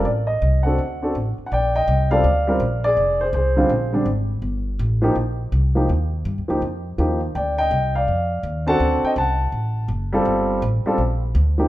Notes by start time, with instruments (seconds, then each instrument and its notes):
0.05 upright bass A1, grand piano D5
0.27 grand piano D#5
0.42 upright bass C2
0.63 grand piano C4 D4 F#4 A4 F#5
0.78 upright bass D2
1.02 grand piano C4 D4 F#4 A4
1.15 upright bass A1
1.38 muted upright bass stroke
1.46 grand piano F#5
1.52 upright bass A#1, grand piano D5 G5
1.76 grand piano D#5 G5
1.88 upright bass C2
2.11 grand piano G3 C4 F4 A4 D5 F5
2.24 upright bass D2
2.47 grand piano G3 C4 F4 A#4
2.60 upright bass A#1
2.84 grand piano G#4 D5
2.97 upright bass F1
3.21 grand piano G#4 C5
3.33 upright bass C2, grand piano G#4 C5
3.56 grand piano D3 G3 C4 F4
3.69 upright bass A#1
3.92 grand piano D3 G3 C4 D4
4.06 upright bass G#1
4.42 upright bass G1
4.79 upright bass A1
5.02 grand piano F3 A#3 D#4 G4
5.16 upright bass A#1
5.52 upright bass C2
5.75 grand piano F3 A#3 D#4 G4
5.89 upright bass D#2
6.25 upright bass G2
6.38 upright bass D#2
6.48 upright bass C#2, grand piano F3 A#3 D#4 G4
6.62 upright bass F2
6.98 upright bass D#2, grand piano F3 A#3 D#4 G4
7.35 upright bass D2, grand piano D5 G5
7.58 grand piano D#5 G5
7.71 upright bass C2
7.95 grand piano D5 F5
8.08 upright bass F2
8.43 upright bass D#2
8.66 grand piano C4 D4 F#4 A4 F#5 A5
8.80 upright bass D2
9.03 grand piano D#5 G5, muted upright bass stroke
9.16 upright bass C2, grand piano A5
9.20 grand piano F#5
9.52 upright bass A1
9.88 upright bass F#1
10.13 grand piano G3 C4 F4 A4
10.25 upright bass G1
10.62 upright bass A1
10.85 grand piano G3 C4 F4 A4, muted upright bass stroke
10.98 upright bass A#1
11.35 upright bass D2
11.58 grand piano F3 A#3 D#4 G4